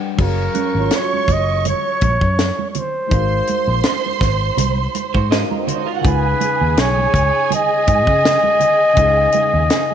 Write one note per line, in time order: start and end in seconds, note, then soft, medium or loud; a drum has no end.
0.00 0.21 G3 loud
0.00 0.20 D4 loud
0.00 0.20 B4 medium
0.00 0.21 F#5 loud
0.15 0.47 F#1 medium
0.15 3.06 F#3 medium
0.15 3.07 C#4 medium
0.15 3.08 G#4 medium
0.15 2.71 C#5 medium
0.15 2.71 C#6 medium
0.15 kick loud
0.15 crash medium
0.19 1.00 F#4 medium
0.19 3.09 A#4 medium
0.19 0.98 A#4 medium
0.19 3.09 F5 medium
0.54 3.40 C#4 medium
0.54 closed hi-hat medium
0.54 muted conga soft
0.54 high conga medium
0.75 0.88 G#1 medium
0.79 3.62 F4 soft
0.91 snare medium
0.91 closed hi-hat medium
0.91 muted conga soft
0.97 1.34 C#5 medium
1.01 3.82 F#4 soft
1.13 high conga soft
1.28 1.72 F#1 medium
1.28 kick medium
1.28 closed hi-hat medium
1.28 muted conga soft
1.33 1.67 D#5 medium
1.65 2.66 C#5 medium
1.65 closed hi-hat medium
1.65 high conga medium
1.65 low conga medium
2.01 2.17 A#1 medium
2.01 kick loud
2.01 closed hi-hat medium
2.01 muted conga soft
2.01 high conga medium
2.21 2.50 F#2 medium
2.21 kick medium
2.39 snare medium
2.39 closed hi-hat medium
2.39 muted conga soft
2.59 high conga medium
2.71 2.81 C#5 medium
2.71 closed hi-hat medium
2.75 4.24 C5 medium
2.75 muted conga soft
2.75 low conga medium
3.07 5.25 G#3 medium
3.07 5.26 D#4 medium
3.07 5.27 F#4 medium
3.07 5.39 C5 medium
3.07 5.39 C6 loud
3.07 closed hi-hat medium
3.11 3.40 G#1 loud
3.11 5.27 A#4 medium
3.11 5.28 C5 medium
3.11 5.29 F5 medium
3.11 kick loud
3.11 muted conga soft
3.47 closed hi-hat medium
3.47 muted conga soft
3.47 high conga medium
3.68 3.81 A#1 medium
3.83 snare medium
3.83 closed hi-hat medium
3.83 muted conga soft
4.06 high conga soft
4.21 4.50 G#1 medium
4.21 kick medium
4.21 snare soft
4.21 closed hi-hat medium
4.21 muted conga soft
4.57 4.86 C2 medium
4.57 closed hi-hat medium
4.57 muted conga soft
4.57 high conga medium
4.57 low conga medium
4.95 closed hi-hat medium
4.95 muted conga soft
4.95 high conga medium
5.14 5.43 G#2 medium
5.14 5.31 F#4 medium
5.14 5.30 C5 medium
5.14 kick medium
5.30 6.04 G#3 medium
5.30 6.03 D#4 medium
5.30 6.05 F#4 medium
5.30 5.66 A#4 medium
5.30 6.05 A#4 soft
5.30 6.05 C5 soft
5.30 5.66 D#5 medium
5.30 6.06 F5 medium
5.30 snare loud
5.30 closed hi-hat medium
5.30 muted conga soft
5.51 5.59 A#3 soft
5.51 5.59 A#4 medium
5.51 high conga medium
5.59 5.68 C4 medium
5.59 5.68 C5 medium
5.67 5.78 C#4 medium
5.67 5.86 F#4 medium
5.67 5.87 C5 medium
5.67 5.78 C#5 medium
5.67 closed hi-hat medium
5.67 muted conga soft
5.67 low conga medium
5.76 5.87 D#4 medium
5.76 5.87 D#5 medium
5.87 5.96 F4 medium
5.87 6.22 F4 medium
5.87 6.22 A#4 medium
5.87 5.96 F5 medium
5.95 6.04 F#4 medium
5.95 6.05 F#5 medium
6.01 8.92 C#3 medium
6.01 8.93 C#4 medium
6.01 8.94 D#4 medium
6.01 9.94 G#4 medium
6.01 9.94 G#5 loud
6.01 kick loud
6.01 muted conga soft
6.05 6.33 C#2 loud
6.05 8.95 B4 medium
6.05 6.82 B4 medium
6.05 8.95 F5 medium
6.05 closed hi-hat medium
6.41 closed hi-hat soft
6.41 muted conga soft
6.41 high conga medium
6.61 6.74 D#2 medium
6.77 7.06 B1 medium
6.77 7.52 C#5 loud
6.77 snare loud
6.77 closed hi-hat medium
6.98 high conga soft
7.14 7.29 C#2 medium
7.14 kick medium
7.14 closed hi-hat medium
7.51 9.94 D#5 loud
7.51 closed hi-hat medium
7.51 muted conga soft
7.51 high conga medium
7.51 low conga medium
7.87 8.08 G#2 medium
7.87 kick medium
7.87 closed hi-hat medium
7.87 high conga medium
8.07 8.36 C#3 medium
8.07 kick medium
8.24 snare loud
8.24 closed hi-hat medium
8.24 muted conga soft
8.43 high conga medium
8.60 closed hi-hat medium
8.60 muted conga soft
8.60 low conga medium
8.94 9.26 C#2 loud
8.94 9.94 C#3 medium
8.94 9.94 C#4 medium
8.94 9.94 D#4 medium
8.94 kick loud
8.94 closed hi-hat medium
8.99 9.94 B4 medium
9.07 9.94 F5 medium
9.32 closed hi-hat medium
9.32 muted conga soft
9.32 high conga medium
9.54 9.67 D#2 medium
9.70 snare medium
9.70 closed hi-hat medium